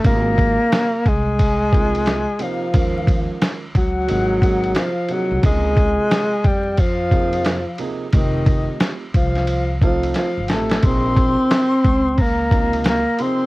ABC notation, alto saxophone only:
X:1
M:4/4
L:1/8
Q:"Swing 16ths" 1/4=89
K:Ab
V:1 name="Alto saxophone" clef=bass
B,3 A,4 F,- | F,2 z _G,3 F, G, | A,3 G, F,3 z | E,2 z F,2 F, F, =A, |
C4 B,2 B, C |]